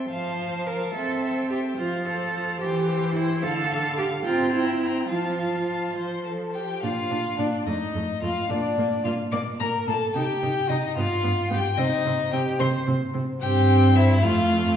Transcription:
Already playing: G5
0.10 F3 C5 F5 A5
0.39 F5 A5
0.66 A#4 F5 A5
0.94 C4 A4 E5 G5
1.23 E5 G5
1.49 G4 E5 G5
1.77 F3 F4 C5 F5
2.04 A4 C5 F5
2.33 C5 F5
2.61 E3 G4 C5 G5
2.88 C5 G5
3.15 E4 C5 G5
3.43 D3 A4 F5
3.71 F5
3.98 G4 F5
4.24 C4 F4 G5 A#5
4.53 E4 G5 A#5
4.82 G5 A#5
5.09 F3 F4 F5 A5
5.38 F5 A5
5.67 F5 A5
5.95 F3 C5 C6
6.25 A4 A5
6.54 G4 G5
6.82 A#2 D4 F4 F5
7.11 A#2 D4
7.38 A#2 D4 D5
7.66 F2 A3 D#4 D#5
7.95 F2 A3
8.22 F2 A3 F4 F5
8.50 A#2 A#3 D4 D5
8.78 A#2 A#3
9.04 A#2 A#3 F4 F5
9.32 A#2 A#3 D5 D6
9.60 A#2 A#3 A#4 A#5
9.87 A#2 A#3 A4 A5
10.15 C3 D#4 G4 G5
10.42 C3 D#4
10.69 C3 D#4 D#5
10.96 G2 B3 F4 F5
11.23 G2 B3
11.50 G2 B3 G4 G5
11.78 C3 C4 D#4 D#5
12.05 C3 C4
12.32 C3 C4 G4 G5
12.59 C3 C4 C5 C6
12.87 C3 C4
13.14 C3 C4
13.41 G2 C4 G4 G5
13.96 E4 E5
14.22 F2 A3 F4 F5

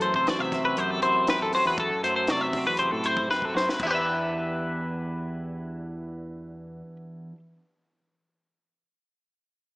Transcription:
Already playing: F#2 E3
0.01 A3 C5, closed hi-hat
0.14 C3 C5, kick
0.27 F#4 D5, snare, closed hi-hat
0.39 C3 E5
0.52 C4, kick, snare, closed hi-hat
0.65 B4
0.77 F#2 C3 C5, closed hi-hat
0.91 A4
1.02 F#2 E4 C5, closed hi-hat
1.27 C4 B4, snare, closed hi-hat
1.39 F#2 A4
1.53 F#3 C5, open hi-hat
1.65 E2 B4
1.78 F#2 A4, kick, closed hi-hat
2.04 F#2 A3 C5, closed hi-hat
2.16 C5
2.27 C3 F#4 D5, snare, closed hi-hat
2.41 E5
2.53 kick, open hi-hat
2.58 C4
2.67 E2 B4
2.77 C3 C5, closed hi-hat
2.91 A2 A4
3.04 E4 C5, closed hi-hat
3.17 kick
3.30 F#2 C4 B4, snare
3.42 A4, kick
3.54 F#2 F#3 C5, snare
3.69 B4, snare
3.80 E2 E4, kick, crash
3.84 E3 B3 D4 G4
3.89 G4 B4
3.95 E5

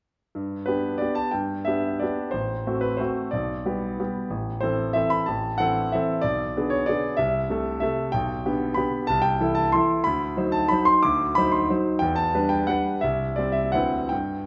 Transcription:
0.35 G2
0.66 B3 D4 G4 B4
0.98 B3 D4 D5
1.02 G4
1.15 A5
1.31 G2 G5
1.65 B3 D4 G4 E5
1.99 B3 D4 G4 D5
2.31 A1 C5
2.67 A3 C4 F#4
2.81 B4
2.97 A3 C4 F#4 C5
3.31 B1 D5
3.66 G3 B3 G4
4.00 G3 B3 G4
4.30 A1
4.61 E3 C4 A4 C5
4.93 E3 C4 A4 E5
5.10 B5
5.26 A1 A5
5.58 E3 C4 A4 F#5
5.92 E3 C4 A4 E5
6.22 B1 D5
6.57 D3 B3 G#4
6.70 C#5
6.86 D3 B3 G#4 D5
7.17 C2 E5
7.50 C3 A3 A4
7.80 C3 A3 A4 E5
8.12 B1 G5
8.46 D3 B3 G4
8.74 D3 B3 G4 B5
9.07 C2 A5
9.22 G5
9.40 E3 E4 A4
9.55 A5
9.72 E3 E4 A4 C6
10.04 D2 B5
10.37 F#3 D#4 C5
10.52 A5
10.68 F#3 D#4 C5 B5
10.85 C6
11.03 D2 D6
11.35 F#3 D#4 C5 B5
11.52 C6
11.70 F#3 D#4 C5
11.99 E2 G5
12.16 A5
12.35 G3 D4 B4
12.49 G5
12.67 G3 D4 B4 F#5
13.01 C2 E5
13.36 G3 C4 C5 D5
13.52 E5
13.72 D2 C4 E4 B4 F#5
14.09 G2 G5

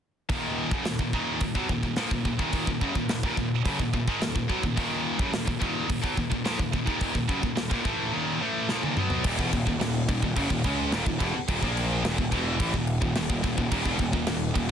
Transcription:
0.29 D#2 A#2 D#3, kick, open hi-hat
0.71 F#2 C#3, kick
0.85 D#2 A#2, snare, open hi-hat
0.99 D#2 A#2, kick
1.13 D#2 A#2 D#3, kick
1.41 D#2 A#2, kick, open hi-hat
1.55 B2 F#3, kick
1.69 D#2 A#2, kick
1.83 D#2 A#2, kick
1.96 A#2 F3, snare, open hi-hat
2.11 D#2 A#2, kick
2.25 D#2 A#2, kick
2.39 D#2 A#2 D#3, kick
2.53 kick, open hi-hat
2.67 D#2 A#2, kick
2.81 F#2 C#3, kick
2.95 D#2 A#2, kick
3.09 D#2 A#2, snare, open hi-hat
3.23 D#2 A#2, kick
3.37 D#2 A#2, kick
3.65 F#2 C#3, kick, open hi-hat
3.79 D#2 A#2, kick
3.93 D#2 A#2, kick
4.08 G#2 D#3, kick
4.22 D#2 A#2, snare, open hi-hat
4.35 D#2 A#2, kick
4.49 B2 F#3, kick
4.63 D#2 A#2, kick
4.77 D#2 A#2 D#3, kick, open hi-hat
5.19 F#2 C#3, kick
5.33 D#2 A#2, snare, open hi-hat
5.47 D#2 A#2, kick
5.61 D#2 A#2 D#3, kick
5.89 D#2 A#2, kick, open hi-hat
6.03 B2 F#3, kick
6.16 D#2 A#2, kick
6.30 D#2 A#2, kick
6.45 A#2 F3, snare, open hi-hat
6.58 D#2 A#2, kick
6.72 D#2 A#2, kick
6.86 D#2 A#2 D#3, kick
7.01 kick, open hi-hat
7.13 D#2 A#2, kick
7.28 F#2 C#3, kick
7.42 D#2 A#2, kick
7.55 D#2 A#2, snare, open hi-hat
7.70 D#2 A#2, kick
7.84 A2 E3 A3, kick
8.12 D#2 A#2 D#3
8.41 A2 E3 A3
8.69 A#2 F3, snare
8.83 D#2 A#2, high tom
8.97 B2 F#3 B3, mid tom
9.10 floor tom
9.24 D#1 D#2 A#2, kick, crash
9.39 E1 E2 B2, kick
9.52 D#1 D#2 A#2, kick, crash
9.65 D#1 D#2 A#2, kick
9.80 D#1 D#2 A#2, snare, crash
10.09 D#1 D#2 A#2, kick, crash
10.22 D#1 D#2 A#2, kick
10.36 F#1 F#2 C#3, kick, crash
10.50 D#1 D#2 A#2, kick
10.64 C#2 C#3 G#3 C#4, kick, crash
10.92 D#1 D#2 A#2, snare, crash
11.06 D#1 D#2 A#2, kick
11.19 E1 E2 B2, kick, crash
11.34 muted distorted electric guitar stroke, muted picked electric bass stroke
11.48 D#1 D#2 A#2, kick, crash
11.61 A#1 A#2 F3 A#3, kick
11.77 crash
12.03 D#1 D#2 A#2, snare, crash
12.18 D#1 D#2 A#2, kick
12.31 E1 E2 B2 E3, kick, crash
12.59 A1 A2 E3, kick, crash
12.74 D#1 D#2 A#2, kick
12.87 crash
13.02 D#1 D#2 A#2, kick
13.15 D#1 D#2 A#2, snare, crash
13.29 D#1 D#2 A#2, kick
13.44 D#1 D#2 A#2, kick, crash
13.58 D#1 D#2 A#2, kick
13.71 D#1 D#2 A#2, kick, crash
13.84 E1 E2 B2, kick
13.99 D#1 D#2 A#2, kick, crash
14.13 D#1 D#2 A#2, kick
14.27 D#1 D#2 A#2, snare, crash
14.54 D#1 D#2 A#2, kick, crash

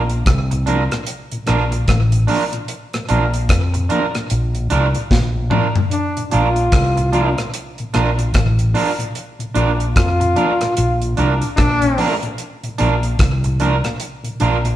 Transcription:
Already playing: A#1
0.10 closed hi-hat
0.26 C2, kick, cross-stick, closed hi-hat
0.51 A#2, muted clean electric guitar stroke, closed hi-hat
0.66 F3 A#3 D4 F4 A#4, closed hi-hat
0.91 A#2, cross-stick, closed hi-hat
1.06 closed hi-hat
1.31 A#2, closed hi-hat
1.46 A#1 F3 A#3 D4 F4 A#4, cross-stick, closed hi-hat
1.71 A#2, muted clean electric guitar stroke, closed hi-hat
1.88 A1, kick, cross-stick, closed hi-hat
2.12 A#2, closed hi-hat
2.27 F3 A#3 D4 F4 A#4, open hi-hat
2.53 A#2, closed hi-hat
2.68 closed hi-hat
2.93 A#2, cross-stick, closed hi-hat
3.09 A#1 F3 A#3 D4 F4 A#4, closed hi-hat
3.34 closed hi-hat
3.49 F2, kick, cross-stick, closed hi-hat
3.74 A#2, muted clean electric guitar stroke, closed hi-hat
3.89 F3 A#3 D4 F4 A#4, closed hi-hat
4.15 A#2, cross-stick, closed hi-hat
4.30 A#1, closed hi-hat
4.55 A#2, closed hi-hat
4.70 C2 F3 A#3 D4 F4 A#4, closed hi-hat
4.95 A#2, muted clean electric guitar stroke, closed hi-hat
5.11 A#1, kick, snare
5.37 A#2
5.50 F3 A#3 D4 F4 A#4, mid tom
5.75 A#2, floor tom
5.91 D4, closed hi-hat
6.17 A#2, closed hi-hat
6.31 A#1 F3 A#3 D4 F4 A#4, closed hi-hat
6.56 closed hi-hat
6.72 C2, kick, cross-stick, closed hi-hat
6.97 A#2, muted clean electric guitar stroke, closed hi-hat
7.12 F3 A#3 D4 F4 A#4, closed hi-hat
7.37 A#2, cross-stick, closed hi-hat
7.54 closed hi-hat
7.78 A#2, closed hi-hat
7.94 A#1 F3 A#3 D4 F4 A#4, cross-stick, closed hi-hat
8.18 A#2, muted clean electric guitar stroke, closed hi-hat
8.34 A1, kick, cross-stick, closed hi-hat
8.59 A#2, closed hi-hat
8.74 F3 A#3 D4 F4 A#4, open hi-hat
8.99 A#2, closed hi-hat
9.15 closed hi-hat
9.39 A#2, closed hi-hat
9.55 A#1 F3 A#3 D4 F4 A#4, closed hi-hat
9.80 closed hi-hat
9.96 F2 F4, kick, cross-stick, closed hi-hat
10.20 A#2, muted clean electric guitar stroke, closed hi-hat
10.36 F3 A#3 D4 F4 A#4, closed hi-hat
10.61 A#2, cross-stick, closed hi-hat
10.77 A#1 F4, closed hi-hat
11.01 A#2, closed hi-hat
11.16 C2 F3 A#3 D4 F4 A#4, closed hi-hat
11.42 A#2, closed hi-hat
11.56 A#1 D4, kick, cross-stick, closed hi-hat
11.82 A#2, closed hi-hat
11.98 F3 A#3 D4 F4 A#4, open hi-hat
12.23 A#2, closed hi-hat
12.38 closed hi-hat
12.63 A#2, closed hi-hat
12.78 A#1 F3 A#3 D4 F4 A#4, closed hi-hat
13.03 closed hi-hat
13.19 C2, kick, cross-stick, closed hi-hat
13.44 A#2, muted clean electric guitar stroke, closed hi-hat
13.60 F3 A#3 D4 F4 A#4, closed hi-hat
13.84 A#2, cross-stick, closed hi-hat
14.00 closed hi-hat
14.24 A#2, closed hi-hat
14.40 A#1 F3 A#3 D4 F4 A#4, closed hi-hat
14.64 A#2, muted clean electric guitar stroke, closed hi-hat

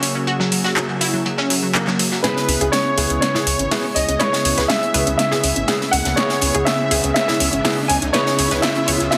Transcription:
Already playing: C#3 F#3 A#3 C#4 F#4 G#4 A#4 C#5 E5
0.03 C#4, closed hi-hat, open hi-hat
0.15 C#4
0.27 F#4, closed hi-hat
0.40 F#3, snare
0.52 F#3, closed hi-hat, open hi-hat
0.64 F#4, snare
0.76 F#3, clap, closed hi-hat
0.89 F#3, closed hi-hat
1.01 E4, closed hi-hat, open hi-hat
1.14 F#3
1.26 F#3, closed hi-hat
1.38 C#4, snare
1.50 F#3, closed hi-hat, open hi-hat
1.63 F#3
1.75 A#3, clap, closed hi-hat
1.87 F#3, snare, clap
1.99 F#3, closed hi-hat, open hi-hat
2.12 F#3, snare
2.23 C#3 G#3 B3 C#4 E4 G#4 B4, snare, closed hi-hat, riser
2.36 C#4, snare
2.48 C#2 C#4, closed hi-hat, open hi-hat
2.61 C#2 C#3 B3 C#4 E4 G#4, closed hi-hat
2.72 C#4 C#5, snare, closed hi-hat
2.86 C#4
2.98 C#2 C#3 B3 C#4 E4 G#4, closed hi-hat, open hi-hat
3.10 C#2 C#4, closed hi-hat
3.21 C#4 C#5, snare, closed hi-hat
3.35 C#3 B3 C#4 E4 G#4, snare
3.47 C#2 C#4, closed hi-hat, open hi-hat
3.59 G#1 C#4, closed hi-hat
3.71 C#3 B3 C#4 E4 G#4, snare, closed hi-hat, open hi-hat
3.84 C#4
3.94 C#2 C#4 D#5, closed hi-hat, open hi-hat
4.08 C#2 C#4, closed hi-hat
4.19 C#3 B3 C#4 E4 G#4 B4 C#5, snare, closed hi-hat
4.33 C#4, snare
4.45 C#2 C#4, closed hi-hat, open hi-hat
4.58 C#2 C#3 B3 C#4 E4 G#4 B4, snare, closed hi-hat
4.68 C#4 E5, snare, closed hi-hat
4.82 C#4, closed hi-hat
4.94 C#2 C#3 B3 C#4 E4 G#4 B4, closed hi-hat, open hi-hat
5.07 C#2 C#4, closed hi-hat
5.18 C#4 E5, snare, closed hi-hat
5.31 C#3 B3 C#4 E4 G#4, snare
5.44 C#2 C#4, closed hi-hat, open hi-hat
5.56 G#1 C#4, closed hi-hat
5.68 C#3 B3 C#4 E4 G#4, snare, closed hi-hat
5.81 C#4, snare
5.91 C#2 C#4 F#5, closed hi-hat, open hi-hat
6.05 C#2 C#4, snare, closed hi-hat
6.16 C#3 B3 C#4 E4 G#4 C#5, snare, closed hi-hat
6.29 C#4, snare
6.41 C#2 C#4, closed hi-hat, open hi-hat
6.54 C#2 C#3 B3 C#4 E4 G#4, closed hi-hat
6.65 C#4 E5, snare, closed hi-hat
6.79 C#4
6.91 C#2 C#3 B3 C#4 E4 G#4, closed hi-hat, open hi-hat
7.04 C#2 C#4, closed hi-hat
7.14 C#4 E5, snare, closed hi-hat
7.28 C#3 B3 C#4 E4 G#4, snare
7.40 C#2 C#4, closed hi-hat, open hi-hat
7.53 G#1 C#4, closed hi-hat
7.65 C#3 B3 C#4 E4 G#4, snare, closed hi-hat, open hi-hat
7.78 C#4
7.88 C#2 C#4 G#5, closed hi-hat, open hi-hat
8.02 C#2 C#4, closed hi-hat
8.13 C#3 B3 C#4 E4 G#4 B4 C#5, snare, closed hi-hat
8.26 C#4, snare
8.39 C#2 C#4, closed hi-hat, open hi-hat
8.51 C#2 C#3 B3 C#4 E4 G#4 B4, snare, closed hi-hat
8.62 C#4 E5, snare, closed hi-hat
8.75 C#4, closed hi-hat
8.88 C#2 C#3 B3 C#4 E4 G#4 C#5, closed hi-hat, open hi-hat
9.00 C#2 C#4, closed hi-hat
9.11 C#4 E5, snare, closed hi-hat

